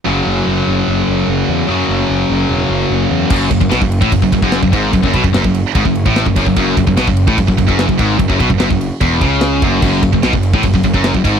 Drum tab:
CC |----------------|----------------|x---------------|----------------|
RD |----------------|----------------|--x-x-x-x-x-x-x-|x-x-x-x-x-x-x-x-|
SD |----------------|----------------|----o-------o---|----o-------o---|
BD |----------------|----------------|o-oo-o-ooooo-oo-|oooo-o--oo-o-ooo|

CC |----------------|----------------|x---------------|
RD |x-x-x-x-x-x-x-x-|x-x-x-x-x-x-x-x-|--x-x-x-x-x-x-x-|
SD |----o-------o---|----o-------o---|----o-------o---|
BD |o-oo-o-ooooo-oo-|oooo-o--o-o---o-|o-oo-o-ooooo-oo-|